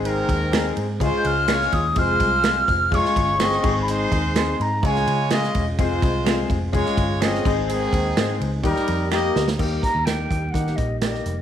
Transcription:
Already playing: picked electric bass G#1, grand piano G#3 C4 D#4 G#4, tonewheel organ G#3 C4 D#4 G#4
0.05 horn section D#3 C4 A#4, ride
0.28 picked electric bass D#2, kick, ride
0.51 grand piano G#3 C4 D#4 G#4, finger snap, snare, ride
0.77 picked electric bass G#2, ride
1.00 picked electric bass C#2, grand piano G#3 C#4 F4 G#4, horn section G#3 F4 C5, tonewheel organ C#4 F4, kick, ride
1.17 flute G6
1.25 picked electric bass C#2, flute F6, ride
1.48 grand piano G#3 C#4 F4 G#4, horn section G#3 F4 C#5, finger snap, snare, ride
1.61 snare
1.72 picked electric bass D#2, flute D#6, kick, ride
1.96 picked electric bass F1, grand piano G#3 C4 F4 G#4, horn section G#3 F4 C5, tonewheel organ C4, flute F6, kick, ride
2.20 picked electric bass C2, kick, ride
2.43 grand piano G#3 C4 F4 G#4, finger snap, snare, ride
2.68 picked electric bass F1, kick, ride
2.90 picked electric bass F1, horn section G#3 F4 C#5, grand piano G#3 C#4 F4 G#4, tonewheel organ C#4, kick, ride
2.94 flute C#6
3.05 snare
3.16 picked electric bass G1, kick, ride
3.39 grand piano G#3 C#4 F4 G#4, horn section C4 G#4 D#5, finger snap, snare, ride
3.52 snare
3.63 picked electric bass G#1, grand piano G#3 C4 D#4 G#4, tonewheel organ C4 D#4, kick, crash
3.82 flute B5
3.88 horn section G#3 D#4 C5, flute C6, hi-hat pedal, ride
4.12 picked electric bass D#2, kick, ride
4.35 grand piano G#3 C4 D#4 G#4, flute C6, finger snap, snare, ride
4.60 picked electric bass G#2, flute A#5, ride
4.82 picked electric bass C#2, grand piano G#3 C#4 F4 G#4, horn section G#3 F4 C#5, tonewheel organ G#3 C#4 F4, flute G#5, kick, ride
4.96 snare
5.07 picked electric bass C#3, ride
5.30 grand piano G#3 C#4 F4 G#4, horn section G#3 F4 D#5, finger snap, snare, ride
5.44 snare
5.55 picked electric bass E1, kick, ride
5.79 picked electric bass F1, grand piano G#3 C4 F4 G#4, horn section G#3 F4 C5, tonewheel organ G#3 C4, kick, ride
6.02 picked electric bass C2, kick, ride
6.25 grand piano G#3 C4 F4 G#4, finger snap, snare, ride
6.50 picked electric bass F1, kick, ride
6.73 picked electric bass F1, grand piano G#3 C#4 F4 G#4, horn section G#3 F4 C#5, tonewheel organ C#4, kick, ride
6.86 snare
6.97 picked electric bass G1, kick, ride
7.20 grand piano G#3 C#4 F4 G#4, horn section C4 G#4 D#5, finger snap, snare, ride
7.35 snare
7.45 picked electric bass G#1, grand piano G#3 C4 D#4 G#4, tonewheel organ C4 D#4, kick, crash
7.68 horn section D#3 C4 G#4, hi-hat pedal, ride
7.93 picked electric bass D#2, kick, ride
8.16 picked electric bass G#2, grand piano G#3 C4 D#4 G#4, finger snap, snare, ride
8.40 picked electric bass C#2, ride
8.63 picked electric bass D#2, horn section G3 D#4 A#4, tonewheel organ G3 A#3 D#4 G4, grand piano G3 A#3 D#4 G4, kick, ride
8.76 muted picked electric bass stroke, snare
8.88 picked electric bass F2, ride
9.11 grand piano G3 A#3 D#4 G4, horn section A#3 G4 D#5, finger snap, snare
9.36 picked electric bass D2, snare
9.48 snare
9.59 picked electric bass D#2, tonewheel organ G3 A#3 D#4 G4, grand piano A#3 D#4 G4, kick, crash
9.83 flute A#5, kick, closed hi-hat
9.95 picked electric bass D#2
10.05 grand piano A#3 D#4 G4, flute G5, finger snap, snare, closed hi-hat
10.31 picked electric bass D#2, kick, closed hi-hat
10.51 picked electric bass D#3, grand piano A#3, flute F#5, kick
10.55 grand piano D#4 G4, closed hi-hat
10.67 snare
10.76 picked electric bass A#1, flute D#5, kick, closed hi-hat
11.00 grand piano A#3 D#4 G4, flute D#5, finger snap, snare, closed hi-hat
11.14 snare
11.26 picked electric bass F1, closed hi-hat

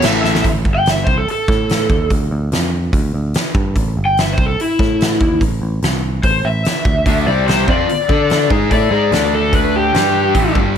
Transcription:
0.02 picked electric bass A1, distorted electric guitar A2 E3 A3, electric slide guitar E5, snare, crash
0.24 electric slide guitar E5, snare
0.35 snare
0.44 picked electric bass A1, kick, open hi-hat
0.65 picked electric bass G1, kick
0.75 electric slide guitar G5
0.86 electric slide guitar E5, snare, open hi-hat
1.04 picked electric bass C2, electric slide guitar C5, kick
1.18 electric slide guitar A4
1.28 electric slide guitar A4, muted picked electric bass stroke, open hi-hat
1.48 picked electric bass A2, kick, snare
1.69 snare, open hi-hat
1.90 picked electric bass D#2, kick
2.10 picked electric bass D2, kick, open hi-hat
2.31 picked electric bass D2
2.52 picked electric bass F2, snare, open hi-hat
2.93 picked electric bass D2, kick, open hi-hat
3.14 picked electric bass D2
3.34 snare, open hi-hat
3.55 picked electric bass G2, kick
3.76 picked electric bass A1, kick, open hi-hat
3.97 picked electric bass G1
4.05 electric slide guitar G5
4.17 electric slide guitar E5, snare, open hi-hat
4.33 electric slide guitar C5
4.38 picked electric bass C2, kick
4.46 electric slide guitar A4
4.58 electric slide guitar E4, muted picked electric bass stroke, open hi-hat
4.79 picked electric bass A2, kick, snare
5.01 snare, open hi-hat
5.12 snare
5.21 picked electric bass D#2, kick
5.41 picked electric bass A1, kick, open hi-hat
5.62 picked electric bass A1
5.82 picked electric bass C2, snare, open hi-hat
6.23 picked electric bass A1, electric slide guitar C5, kick, open hi-hat
6.45 picked electric bass A1, electric slide guitar E5
6.65 snare, open hi-hat
6.85 picked electric bass D2, kick
7.06 picked electric bass D2, distorted electric guitar D3 A3 D4, kick, open hi-hat
7.27 picked electric bass C2, distorted electric guitar C3 G3 C4, electric slide guitar D5
7.48 electric slide guitar C5, snare, open hi-hat
7.68 picked electric bass F2, distorted electric guitar F3 C4 F4, electric slide guitar D5, kick
7.88 muted distorted electric guitar stroke, muted picked electric bass stroke, open hi-hat
8.09 picked electric bass D3, distorted electric guitar D4 A4 D5, kick
8.30 snare, open hi-hat
8.50 picked electric bass G#2, distorted electric guitar G#3 D#4 G#4, kick
8.71 picked electric bass A2, distorted electric guitar A3 E4 A4, electric slide guitar D5, kick, open hi-hat
8.91 picked electric bass G#2, distorted electric guitar G#3 D#4 G#4
9.11 picked electric bass D2, distorted electric guitar D3 A3 D4, snare, open hi-hat
9.35 electric slide guitar A4
9.53 electric slide guitar B4, kick, open hi-hat
9.76 electric slide guitar G4
9.94 picked electric bass G2, distorted electric guitar G3 D4 G4, snare, open hi-hat
10.35 picked electric bass A1, distorted electric guitar A2 E3 A3, kick, open hi-hat
10.55 picked electric bass G1, distorted electric guitar G2 D3 G3, kick

